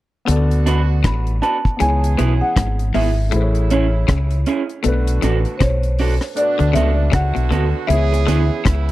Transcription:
0.25 fingered electric bass D2, clean electric guitar D3, horn section D3 B3 F#4, grand piano B3 F#4 A4, closed hi-hat
0.31 grand piano D5
0.51 closed hi-hat
0.66 clean electric guitar D4 F#4 B4, closed hi-hat
1.04 fingered electric bass A1, clean electric guitar A2, marimba B5, kick, cross-stick, closed hi-hat
1.27 closed hi-hat
1.42 clean electric guitar D4 F#4 B4, marimba A5, closed hi-hat
1.65 kick
1.77 clean electric guitar C#3, horn section E3 C#4 G#4, grand piano B3 E4, marimba G#5, closed hi-hat
1.81 fingered electric bass C#2, grand piano G#4 C#5
2.04 closed hi-hat
2.18 fingered electric bass B1, clean electric guitar B2 B3 E4 G#4, closed hi-hat
2.41 marimba F#5, muted clean electric guitar stroke
2.56 fingered electric bass G#1, clean electric guitar G#2, kick, cross-stick, closed hi-hat
2.79 closed hi-hat
2.94 fingered electric bass G#1, clean electric guitar G#2 B3 E4 G#4, marimba E5, open hi-hat
3.29 clean electric guitar A2, horn section C#3 A3 E4, grand piano A3 E4, closed hi-hat
3.34 fingered electric bass A1, grand piano G#4 C5
3.42 grand piano C#5
3.55 closed hi-hat
3.70 clean electric guitar C#4 E4 G#4, marimba C#5, closed hi-hat
4.08 fingered electric bass C#2, clean electric guitar C#3, kick, cross-stick, closed hi-hat
4.31 closed hi-hat
4.46 clean electric guitar C#4 E4 G#4, closed hi-hat
4.70 closed hi-hat
4.82 fingered electric bass B1, clean electric guitar B2, horn section D3 B3 F#4, grand piano A3 D4 F#4, closed hi-hat
4.88 grand piano B4
5.07 closed hi-hat
5.22 fingered electric bass A1, clean electric guitar A2 D4 F#4 A4, closed hi-hat
5.45 muted clean electric guitar stroke, closed hi-hat
5.58 fingered electric bass B1, clean electric guitar B2, marimba C5, kick, cross-stick, closed hi-hat
5.62 marimba C#5
5.83 closed hi-hat
5.99 clean electric guitar D4 F#4 A4, open hi-hat
6.21 cross-stick
6.35 horn section B2 A3 D4, grand piano A3 F#4 D5, marimba D5, closed hi-hat
6.41 grand piano B4
6.59 fingered electric bass D2, clean electric guitar D3, closed hi-hat
6.73 fingered electric bass C#2, clean electric guitar C#3 B3 F#4 A4, marimba E5, closed hi-hat
7.12 fingered electric bass C#2, clean electric guitar C#3, horn section D3 B3 F#4, marimba F#5, kick, cross-stick, closed hi-hat
7.35 fingered electric bass B1, clean electric guitar B2, closed hi-hat
7.51 fingered electric bass D2, clean electric guitar D3 B3 F#4 A4, closed hi-hat
7.87 fingered electric bass C#2, clean electric guitar C#3, horn section E3 C#4 G#4, grand piano B3 E4, marimba E5, closed hi-hat
7.91 grand piano C#5 G#5
8.13 muted clean electric guitar stroke, closed hi-hat
8.27 fingered electric bass D2, clean electric guitar D3 B3 E4 G#4, closed hi-hat
8.65 fingered electric bass C#2, horn section C#3 B3 E4, clean electric guitar C#3, kick, cross-stick, closed hi-hat

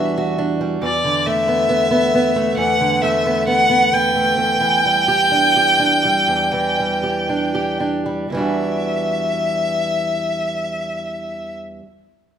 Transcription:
Already playing: upright bass E2, steel-string acoustic guitar E2 E3 G3 D4 F#4, violin E5
0.18 steel-string acoustic guitar F#4
0.38 steel-string acoustic guitar D4
0.61 steel-string acoustic guitar G3
0.82 steel-string acoustic guitar E2, violin D5
1.04 steel-string acoustic guitar D3
1.26 steel-string acoustic guitar A3, violin E5
1.48 steel-string acoustic guitar B3
1.69 steel-string acoustic guitar B3
1.91 steel-string acoustic guitar B3
2.15 steel-string acoustic guitar B3
2.36 steel-string acoustic guitar A3
2.57 steel-string acoustic guitar E2, violin F#5
2.80 steel-string acoustic guitar D3
3.02 steel-string acoustic guitar A3, violin E5
3.26 steel-string acoustic guitar B3
3.47 steel-string acoustic guitar B3, violin F#5
3.70 steel-string acoustic guitar B3
3.93 steel-string acoustic guitar B3, violin G5
4.16 steel-string acoustic guitar A3
4.38 steel-string acoustic guitar E2
4.60 steel-string acoustic guitar E3
4.85 steel-string acoustic guitar G3
5.08 steel-string acoustic guitar G4
5.32 steel-string acoustic guitar D4
5.56 steel-string acoustic guitar G4
5.80 steel-string acoustic guitar D4
6.05 steel-string acoustic guitar G3
6.28 steel-string acoustic guitar E2
6.53 steel-string acoustic guitar E3
6.80 steel-string acoustic guitar G3
7.03 steel-string acoustic guitar G4
7.29 steel-string acoustic guitar D4
7.55 steel-string acoustic guitar G4
7.80 steel-string acoustic guitar D4
8.06 steel-string acoustic guitar G3
8.30 steel-string acoustic guitar E2 E3, violin E5
8.34 steel-string acoustic guitar G3 D4 F#4

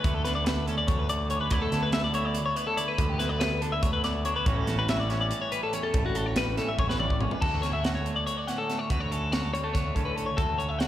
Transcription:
Already playing: clean electric guitar D3 D4 B4
0.04 clean electric guitar D2 A3, picked electric bass D2, kick, closed hi-hat
0.14 clean electric guitar A4
0.25 clean electric guitar D4 B4, snare, closed hi-hat
0.35 clean electric guitar D5
0.45 clean electric guitar A3 B4, snare, closed hi-hat
0.66 clean electric guitar D3 C#4 A4, closed hi-hat
0.78 clean electric guitar D5
0.87 picked electric bass D2, clean electric guitar C#5, kick, closed hi-hat
0.99 clean electric guitar B4
1.09 clean electric guitar A3 D5, closed hi-hat
1.30 clean electric guitar D2 C#4 C#5, closed hi-hat
1.41 clean electric guitar B4
1.50 clean electric guitar D2 D3 B3 E4 D5, picked electric bass D2, kick, closed hi-hat
1.62 clean electric guitar A4
1.72 picked electric bass D2, clean electric guitar E4, snare, closed hi-hat
1.83 clean electric guitar B4
1.92 clean electric guitar B3 E5, snare, closed hi-hat
2.04 clean electric guitar D5
2.13 clean electric guitar D3 E4 C#5, closed hi-hat
2.25 clean electric guitar D5
2.35 closed hi-hat
2.46 clean electric guitar C#5
2.56 clean electric guitar B3 B4, closed hi-hat
2.67 clean electric guitar A4
2.77 clean electric guitar D2 E4 D5, closed hi-hat
2.88 clean electric guitar B4
2.98 clean electric guitar D2 B3, picked electric bass D2, kick, closed hi-hat
3.09 clean electric guitar G4
3.19 clean electric guitar E4 B4, snare, closed hi-hat
3.29 clean electric guitar D5
3.40 clean electric guitar B3 B4, snare, closed hi-hat
3.61 clean electric guitar D3 D4 A4, closed hi-hat
3.72 clean electric guitar E4 E5
3.83 picked electric bass D2, clean electric guitar C#5, kick, closed hi-hat
3.93 clean electric guitar B4
4.04 clean electric guitar B3 D5, snare, closed hi-hat
4.25 clean electric guitar D2 D4 C#5, closed hi-hat
4.36 clean electric guitar E4 B4
4.46 picked electric bass A1, clean electric guitar A2 E3 G3 C#4 F#4 C#5, kick, closed hi-hat
4.57 clean electric guitar A4
4.67 picked electric bass A1, clean electric guitar F#4, snare, closed hi-hat
4.79 clean electric guitar B4
4.89 clean electric guitar G3 E5, snare, closed hi-hat
5.00 clean electric guitar D5
5.10 clean electric guitar E3 C#4 C#5, snare, closed hi-hat
5.21 clean electric guitar D5
5.31 closed hi-hat
5.42 clean electric guitar C#5
5.52 clean electric guitar G3 B4, closed hi-hat
5.63 clean electric guitar A4
5.73 clean electric guitar E2 C#4 C#5, closed hi-hat
5.83 clean electric guitar A4
5.93 picked electric bass A1, clean electric guitar A2 G3, kick, closed hi-hat
6.06 clean electric guitar F#4
6.15 clean electric guitar F#4 A4, closed hi-hat
6.26 clean electric guitar C#5
6.36 clean electric guitar G3 B4, snare, closed hi-hat
6.57 clean electric guitar E3 C#4 A4, snare, closed hi-hat
6.68 clean electric guitar E5
6.79 picked electric bass A1, clean electric guitar C#5, kick
6.89 clean electric guitar B4, snare
7.00 clean electric guitar G3 D5, mid tom
7.10 kick
7.21 clean electric guitar E2 C#4 C#5, floor tom
7.31 clean electric guitar B4, floor tom
7.42 picked electric bass D2, clean electric guitar D2 F#4 A4, kick, crash
7.62 clean electric guitar C#4 C#5, snare, closed hi-hat
7.73 clean electric guitar E5
7.84 clean electric guitar F#4 F#5, snare, closed hi-hat
7.95 clean electric guitar C#5
8.06 clean electric guitar D3 A3, closed hi-hat
8.16 clean electric guitar D5
8.27 clean electric guitar C#5, closed hi-hat
8.37 clean electric guitar D5
8.48 clean electric guitar A2 C#4 F#5, snare, closed hi-hat
8.58 clean electric guitar A4
8.70 clean electric guitar A3, snare, closed hi-hat
8.79 clean electric guitar C#5
8.90 picked electric bass D2, clean electric guitar D2 F#4 B4, kick, closed hi-hat
9.00 clean electric guitar C#5
9.12 clean electric guitar C#4 A4, closed hi-hat
9.32 clean electric guitar F#4 C#5, snare, closed hi-hat
9.43 clean electric guitar A4
9.53 clean electric guitar D3 G3 C#5, closed hi-hat
9.63 clean electric guitar A3 A4
9.74 picked electric bass D2, clean electric guitar C#5, kick, snare, closed hi-hat
9.95 clean electric guitar A2 C#4 A4, picked electric bass D3, kick, closed hi-hat
10.05 clean electric guitar B4
10.16 clean electric guitar A3 A4, closed hi-hat
10.26 clean electric guitar C#5
10.36 clean electric guitar D2 F#4 A4, picked electric bass D2, kick, closed hi-hat
10.58 clean electric guitar C#4 C#5, closed hi-hat
10.69 clean electric guitar E5
10.79 clean electric guitar F#4 F#5, snare, closed hi-hat

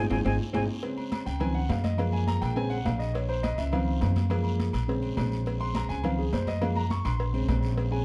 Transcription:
0.10 upright bass G#1, grand piano G#3 C4 D#4, alto saxophone C4, flute G#5, high bongo, high conga, high timbale, long guiro
0.25 upright bass G#1, grand piano G#3 C4 D#4, alto saxophone C4, flute G#5, high bongo, high conga, high timbale, long guiro
0.53 upright bass G#1, grand piano G#3 C4 D#4, alto saxophone C4, flute G#5, high bongo, high conga, high timbale, long guiro
0.83 grand piano C#3 G#3 C4, cowbell, high conga, low agogo, long guiro
0.98 high conga, low agogo
1.12 cowbell, high conga, low timbale, low agogo, short guiro
1.26 upright bass C#2, grand piano G5, high conga, low agogo, short guiro
1.40 grand piano D#3 F3 C4 G#5, cowbell, high conga, low conga, low agogo, long guiro
1.55 grand piano F#5, high conga
1.69 upright bass F#2, grand piano F5, cowbell, high conga, low timbale, low agogo, short guiro
1.84 grand piano D#5, cowbell, high conga, low agogo, short guiro
1.97 grand piano F3 G#3 A#3 F5, cowbell, high conga, low agogo, long guiro
2.13 grand piano G#5, high conga, low agogo
2.27 grand piano A#5, cowbell, high conga, low timbale, short guiro
2.41 upright bass A#1, grand piano G5, cowbell, high conga, low agogo, short guiro
2.55 grand piano C#3 G#3 C4 G#5, cowbell, high conga, long guiro
2.70 grand piano F#5, high conga, low agogo
2.85 upright bass A#1, grand piano F5, cowbell, high conga, low timbale, low agogo, short guiro
2.99 grand piano D#5, high conga, short guiro
3.14 grand piano C#5, cowbell, high conga, low agogo, long guiro
3.29 grand piano C5, high conga, low agogo
3.43 grand piano D#5, cowbell, high conga, low timbale, low agogo, short guiro
3.58 upright bass C#2, grand piano E5, high conga, low agogo, short guiro
3.72 grand piano D#3 F3 C4 F5, cowbell, high conga, low conga, low agogo, long guiro
3.88 high conga
4.01 upright bass F#2, cowbell, high conga, low timbale, low agogo, short guiro
4.16 cowbell, high conga, low agogo, short guiro
4.30 grand piano F3 G#3 A#3, cowbell, high conga, low agogo, long guiro
4.44 high conga, low agogo
4.59 cowbell, high conga, low timbale, short guiro
4.73 upright bass A#1, cowbell, high conga, low agogo, short guiro
4.88 grand piano C#3 G#3 C4, cowbell, high conga, long guiro
5.02 high conga, low agogo
5.17 upright bass A#1, cowbell, high conga, low timbale, low agogo, short guiro
5.32 high conga, short guiro
5.46 cowbell, high conga, low agogo, long guiro
5.60 grand piano C6, high conga, low agogo
5.75 grand piano A#5, cowbell, high conga, low timbale, low agogo, short guiro
5.89 upright bass C#2, grand piano G#5, high conga, low agogo, short guiro
6.03 grand piano D#3 F3 C4 F5, cowbell, high conga, low conga, low agogo, long guiro
6.18 grand piano G#4, high conga
6.32 upright bass F#2, grand piano C5, cowbell, high conga, low timbale, low agogo, short guiro
6.47 grand piano D#5, cowbell, high conga, low agogo, short guiro
6.61 grand piano F3 G#3 A#3 F5, cowbell, high conga, low agogo, long guiro
6.76 grand piano A#5, high conga, low agogo
6.90 grand piano C#6, cowbell, high conga, low timbale, short guiro
7.05 upright bass A#1, grand piano C6, cowbell, high conga, low agogo, short guiro
7.19 cowbell, high conga, long guiro
7.33 grand piano C#3 G#3 C4, high conga, low agogo
7.48 upright bass A#1, cowbell, high conga, low timbale, low agogo, short guiro
7.63 high conga, short guiro
7.77 cowbell, high conga, low agogo, long guiro
7.91 grand piano C#3 G#3 C4 G#5, high conga, low agogo

